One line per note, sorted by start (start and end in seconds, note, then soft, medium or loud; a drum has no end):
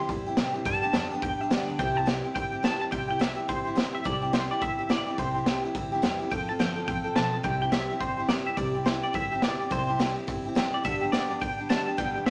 0.01 0.09 C4 soft
0.08 0.37 E2 medium
0.08 0.26 G3 medium
0.08 0.27 C4 medium
0.08 0.27 E4 medium
0.08 0.25 G4 medium
0.08 kick loud
0.08 open hi-hat medium
0.26 0.37 C4 medium
0.26 0.37 E4 medium
0.26 0.37 G4 medium
0.37 0.65 A2 loud
0.37 0.55 C3 medium
0.37 0.55 G3 medium
0.37 0.55 C4 medium
0.37 0.54 E4 medium
0.37 0.53 G4 medium
0.37 snare loud
0.37 open hi-hat medium
0.54 0.66 C4 medium
0.54 0.66 E4 medium
0.54 0.65 G4 medium
0.65 0.83 G2 medium
0.65 0.82 G2 loud
0.65 0.83 D3 medium
0.65 0.84 G3 medium
0.65 0.84 B3 medium
0.65 0.83 D4 medium
0.65 0.81 G4 medium
0.65 1.21 A5 loud
0.65 kick loud
0.65 open hi-hat medium
0.82 0.94 G3 soft
0.82 0.94 B3 soft
0.82 0.94 D4 soft
0.82 0.94 G4 medium
0.82 muted upright bass stroke soft
0.93 1.21 F2 medium
0.93 1.12 G2 medium
0.93 1.12 D3 medium
0.93 1.12 G3 medium
0.93 1.12 B3 medium
0.93 1.12 D4 medium
0.93 1.10 G4 loud
0.93 snare loud
0.93 open hi-hat medium
1.11 1.21 G3 medium
1.11 1.23 B3 medium
1.11 1.23 D4 medium
1.11 1.22 G4 medium
1.22 1.39 E2 medium
1.22 1.40 G3 medium
1.22 1.41 B3 medium
1.22 1.40 D4 medium
1.22 1.39 G4 medium
1.22 1.41 G5 medium
1.22 kick loud
1.22 open hi-hat medium
1.40 1.50 G3 soft
1.40 1.51 B3 medium
1.40 1.51 D4 medium
1.40 1.51 G4 medium
1.40 1.52 E5 medium
1.40 muted upright bass stroke soft
1.50 1.78 D2 medium
1.50 1.68 G2 medium
1.50 1.69 D3 medium
1.50 1.69 G3 medium
1.50 1.69 B3 medium
1.50 1.68 D4 loud
1.50 1.67 G4 medium
1.50 1.79 D5 loud
1.50 snare loud
1.50 open hi-hat medium
1.68 1.78 G3 soft
1.68 1.80 B3 medium
1.68 1.79 D4 medium
1.68 1.79 G4 medium
1.79 2.19 C2 medium
1.79 1.96 C3 medium
1.79 1.97 G3 medium
1.79 1.97 C4 medium
1.79 1.96 E4 medium
1.79 1.94 G4 medium
1.79 1.97 G5 loud
1.79 kick loud
1.79 open hi-hat medium
1.96 2.06 C4 soft
1.96 2.06 E4 medium
1.96 2.07 G4 medium
1.96 2.08 A5 medium
2.06 2.24 C3 medium
2.06 2.25 G3 medium
2.06 2.25 C4 medium
2.06 2.24 E4 medium
2.06 2.23 G4 medium
2.06 2.34 G5 loud
2.06 snare loud
2.06 open hi-hat soft
2.24 2.34 C4 soft
2.24 2.35 E4 medium
2.24 2.35 G4 soft
2.34 2.75 G1 medium
2.34 2.52 G3 medium
2.34 2.53 C4 medium
2.34 2.52 E4 medium
2.34 2.51 G4 medium
2.34 2.65 G5 loud
2.34 kick loud
2.34 open hi-hat medium
2.52 2.62 C4 soft
2.52 2.63 E4 soft
2.52 2.63 G4 medium
2.63 2.81 C3 medium
2.63 2.81 G3 medium
2.63 2.81 C4 medium
2.63 2.81 E4 medium
2.63 2.79 G4 medium
2.63 2.80 A5 loud
2.63 snare loud
2.63 open hi-hat soft
2.80 2.91 C4 soft
2.80 2.91 E4 soft
2.80 2.91 G4 medium
2.80 2.86 A5 loud
2.91 3.32 C2 medium
2.91 3.09 C3 medium
2.91 3.10 G3 medium
2.91 3.10 C4 medium
2.91 3.09 E4 medium
2.91 3.07 G4 medium
2.91 3.09 G5 loud
2.91 kick loud
2.91 open hi-hat medium
3.08 3.19 C4 soft
3.08 3.20 E4 soft
3.08 3.20 G4 medium
3.08 3.21 G5 medium
3.19 3.37 C3 medium
3.19 3.38 G3 medium
3.19 3.38 C4 medium
3.19 3.37 E4 medium
3.19 3.35 G4 medium
3.19 3.47 E5 medium
3.19 snare loud
3.19 open hi-hat medium
3.36 3.48 C4 soft
3.36 3.49 E4 medium
3.36 3.48 G4 medium
3.48 3.88 G1 medium
3.48 3.66 G3 medium
3.48 3.67 C4 medium
3.48 3.66 E4 medium
3.48 3.64 G4 medium
3.48 3.96 C5 medium
3.48 kick loud
3.48 open hi-hat medium
3.65 3.75 C4 soft
3.65 3.75 E4 medium
3.65 3.76 G4 medium
3.75 3.94 C3 medium
3.75 3.94 G3 medium
3.75 3.94 C4 medium
3.75 3.94 E4 medium
3.75 3.91 G4 medium
3.75 snare loud
3.75 open hi-hat medium
3.93 4.04 C4 soft
3.93 4.05 E4 medium
3.93 4.04 G4 medium
3.93 4.06 E5 medium
4.04 4.45 C2 medium
4.04 4.22 C3 medium
4.04 4.23 G3 medium
4.04 4.23 C4 medium
4.04 4.22 E4 medium
4.04 4.21 G4 medium
4.04 4.34 D5 medium
4.04 kick loud
4.04 open hi-hat medium
4.22 4.32 C4 soft
4.22 4.33 E4 soft
4.22 4.33 G4 medium
4.33 4.51 C3 medium
4.33 4.51 G3 medium
4.33 4.51 C4 medium
4.33 4.51 E4 medium
4.33 4.50 G4 medium
4.33 4.51 C5 medium
4.33 snare loud
4.33 open hi-hat medium
4.51 4.61 C4 soft
4.51 4.62 E4 medium
4.51 4.62 G4 medium
4.51 4.62 D5 medium
4.61 5.01 G1 medium
4.61 4.79 G3 medium
4.61 4.79 C4 medium
4.61 4.79 E4 medium
4.61 4.77 G4 medium
4.61 4.91 E5 medium
4.61 kick loud
4.61 open hi-hat soft
4.79 4.89 C4 soft
4.79 4.89 E4 soft
4.79 4.90 G4 medium
4.89 5.07 C3 medium
4.89 5.07 G3 medium
4.89 5.08 C4 medium
4.89 5.07 E4 medium
4.89 5.05 G4 medium
4.89 5.12 D5 medium
4.89 snare loud
4.89 open hi-hat medium
5.07 5.18 C4 soft
5.07 5.18 E4 medium
5.07 5.18 G4 medium
5.13 5.18 D5 medium
5.18 5.58 C2 medium
5.18 5.36 C3 medium
5.18 5.36 G3 medium
5.18 5.36 C4 medium
5.18 5.35 E4 medium
5.18 5.33 G4 medium
5.18 5.62 C5 medium
5.18 kick loud
5.18 open hi-hat medium
5.34 5.46 C4 soft
5.34 5.47 E4 medium
5.34 5.46 G4 medium
5.46 5.64 C3 medium
5.46 5.64 G3 medium
5.46 5.65 C4 medium
5.46 5.64 E4 medium
5.46 5.62 G4 medium
5.46 snare loud
5.46 open hi-hat medium
5.64 5.74 C4 medium
5.64 5.76 E4 medium
5.64 5.75 G4 medium
5.75 5.99 D2 medium
5.75 5.92 G3 medium
5.75 5.93 C4 medium
5.75 5.92 E4 medium
5.75 5.91 G4 medium
5.75 kick loud
5.75 open hi-hat medium
5.92 6.02 C4 medium
5.92 6.02 E4 medium
5.92 6.03 G4 medium
6.02 6.28 E2 medium
6.02 6.20 C3 medium
6.02 6.21 G3 medium
6.02 6.21 C4 medium
6.02 6.21 E4 medium
6.02 6.19 G4 medium
6.02 snare loud
6.02 open hi-hat medium
6.20 6.31 C4 soft
6.20 6.32 E4 medium
6.20 6.31 G4 medium
6.31 6.51 F2 medium
6.31 6.49 F3 medium
6.31 6.49 C4 medium
6.31 6.49 F4 medium
6.31 6.47 A4 medium
6.31 6.49 G5 loud
6.31 kick loud
6.31 open hi-hat medium
6.49 6.59 C4 soft
6.49 6.59 F4 medium
6.49 6.60 A4 medium
6.49 6.54 A5 loud
6.59 6.84 G1 medium
6.59 6.77 F3 medium
6.59 6.77 C4 medium
6.59 6.77 F4 medium
6.59 6.75 A4 medium
6.59 6.87 G5 loud
6.59 snare loud
6.59 open hi-hat medium
6.76 6.87 C4 soft
6.76 6.88 F4 soft
6.76 6.87 A4 medium
6.86 7.12 A1 medium
6.86 7.05 F3 medium
6.86 7.06 C4 medium
6.86 7.05 F4 medium
6.86 7.03 A4 medium
6.86 7.16 G5 loud
6.86 kick loud
6.86 open hi-hat soft
7.04 7.15 C4 soft
7.04 7.15 F4 medium
7.04 7.16 A4 medium
7.16 7.40 B1 medium
7.16 7.34 F3 medium
7.16 7.34 C4 medium
7.16 7.33 F4 medium
7.16 7.32 A4 medium
7.16 7.44 A5 loud
7.16 snare loud
7.16 open hi-hat medium
7.33 7.43 C4 soft
7.33 7.44 F4 soft
7.33 7.44 A4 medium
7.43 7.84 C2 medium
7.43 7.62 C3 medium
7.43 7.62 G3 medium
7.43 7.62 C4 medium
7.43 7.61 E4 medium
7.43 7.60 G4 medium
7.43 7.61 G5 loud
7.43 kick loud
7.43 open hi-hat soft
7.61 7.72 C4 soft
7.61 7.72 E4 medium
7.61 7.72 G4 medium
7.61 7.72 G5 medium
7.72 7.90 C3 medium
7.72 7.90 G3 medium
7.72 7.91 C4 medium
7.72 7.90 E4 medium
7.72 7.88 G4 medium
7.72 8.02 E5 medium
7.72 snare loud
7.72 open hi-hat medium
7.90 8.00 C4 soft
7.90 8.02 E4 medium
7.90 8.01 G4 medium
8.00 8.40 G1 medium
8.00 8.18 G3 medium
8.00 8.19 C4 medium
8.00 8.18 E4 medium
8.00 8.16 G4 medium
8.00 8.28 C5 medium
8.00 kick loud
8.00 open hi-hat soft
8.17 8.29 C4 medium
8.17 8.29 E4 medium
8.17 8.29 G4 medium
8.29 8.47 C3 medium
8.29 8.47 G3 medium
8.29 8.47 C4 medium
8.29 8.46 E4 medium
8.29 8.44 G4 medium
8.29 8.34 D5 medium
8.29 snare loud
8.29 open hi-hat medium
8.46 8.56 C4 soft
8.46 8.57 E4 medium
8.46 8.57 G4 medium
8.46 8.57 E5 medium
8.57 8.97 C2 loud
8.57 8.75 C3 medium
8.57 8.75 G3 medium
8.57 8.75 C4 medium
8.57 8.75 E4 medium
8.57 8.74 G4 medium
8.57 8.87 D5 medium
8.57 kick loud
8.57 open hi-hat medium
8.75 8.86 C4 soft
8.75 8.87 E4 medium
8.75 8.86 G4 medium
8.86 9.04 C3 medium
8.86 9.04 G3 medium
8.86 9.04 C4 medium
8.86 9.04 E4 medium
8.86 9.02 G4 medium
8.86 8.91 C5 medium
8.86 snare loud
8.86 open hi-hat medium
9.03 9.13 C4 medium
9.03 9.14 E4 medium
9.03 9.14 G4 medium
9.03 9.15 D5 medium
9.13 9.54 G1 medium
9.13 9.31 G3 medium
9.13 9.32 C4 medium
9.13 9.32 E4 medium
9.13 9.31 G4 medium
9.13 9.44 E5 medium
9.13 kick loud
9.13 open hi-hat medium
9.32 9.42 C4 soft
9.32 9.43 E4 medium
9.32 9.43 G4 medium
9.42 9.60 C3 medium
9.42 9.61 G3 medium
9.42 9.61 C4 medium
9.42 9.61 E4 medium
9.42 9.59 G4 medium
9.42 9.70 D5 medium
9.42 snare loud
9.42 open hi-hat medium
9.60 9.71 C4 soft
9.60 9.71 E4 soft
9.60 9.71 G4 medium
9.70 10.11 C2 medium
9.70 9.89 C3 medium
9.70 9.89 G3 medium
9.70 9.89 C4 medium
9.70 9.89 E4 medium
9.70 9.87 G4 medium
9.70 10.14 C5 medium
9.70 kick loud
9.70 open hi-hat medium
9.88 9.99 C4 soft
9.88 10.00 E4 medium
9.88 10.00 G4 medium
9.99 10.17 C3 medium
9.99 10.17 G3 medium
9.99 10.17 C4 medium
9.99 10.16 E4 medium
9.99 10.15 G4 loud
9.99 snare loud
9.99 open hi-hat medium
10.16 10.27 C4 medium
10.16 10.28 E4 medium
10.16 10.27 G4 medium
10.27 10.68 G1 medium
10.27 10.45 G3 medium
10.27 10.46 C4 medium
10.27 10.45 E4 medium
10.27 10.44 G4 medium
10.27 kick loud
10.27 open hi-hat medium
10.45 10.55 C4 medium
10.45 10.56 E4 medium
10.45 10.56 G4 medium
10.55 10.73 C3 medium
10.55 10.74 G3 medium
10.55 10.74 C4 medium
10.55 10.73 E4 loud
10.55 10.72 G4 medium
10.55 snare loud
10.55 open hi-hat medium
10.73 10.85 C4 soft
10.73 10.85 E4 soft
10.73 10.84 G4 medium
10.73 10.84 D5 medium
10.84 11.25 G1 medium
10.84 11.02 G2 medium
10.84 11.02 D3 medium
10.84 11.02 G3 medium
10.84 11.02 B3 medium
10.84 11.01 D4 medium
10.84 11.00 G4 medium
10.84 11.11 E5 loud
10.84 kick loud
10.84 open hi-hat medium
11.01 11.12 G3 soft
11.01 11.13 B3 medium
11.01 11.13 D4 medium
11.01 11.12 G4 medium
11.12 11.30 G2 medium
11.12 11.31 D3 medium
11.12 11.31 G3 medium
11.12 11.31 B3 medium
11.12 11.30 D4 medium
11.12 11.29 G4 medium
11.12 11.41 D5 medium
11.12 snare loud
11.12 open hi-hat medium
11.30 11.39 G3 soft
11.30 11.40 B3 medium
11.30 11.41 D4 medium
11.30 11.41 G4 medium
11.40 11.81 D2 medium
11.40 11.58 G3 medium
11.40 11.59 B3 medium
11.40 11.58 D4 medium
11.40 11.57 G4 medium
11.40 11.69 G5 loud
11.40 kick loud
11.40 open hi-hat soft
11.58 11.69 G3 soft
11.58 11.70 B3 soft
11.58 11.69 D4 medium
11.58 11.70 G4 medium
11.69 11.87 G2 medium
11.69 11.88 D3 medium
11.69 11.88 G3 medium
11.69 11.88 B3 medium
11.69 11.87 D4 medium
11.69 11.86 G4 medium
11.69 11.98 A5 loud
11.69 snare loud
11.69 open hi-hat medium
11.87 11.97 G3 soft
11.87 11.97 B3 soft
11.87 11.98 D4 medium
11.87 11.98 G4 medium
11.97 12.30 G1 medium
11.97 12.16 G2 medium
11.97 12.16 D3 medium
11.97 12.16 G3 medium
11.97 12.16 B3 medium
11.97 12.15 D4 medium
11.97 12.14 G4 medium
11.97 12.26 G5 loud
11.97 kick loud
11.97 open hi-hat soft
12.16 12.27 G3 soft
12.16 12.27 B3 soft
12.16 12.27 D4 soft
12.16 12.27 G4 medium
12.26 12.30 G2 medium
12.26 12.30 E5 medium
12.26 snare loud
12.26 open hi-hat soft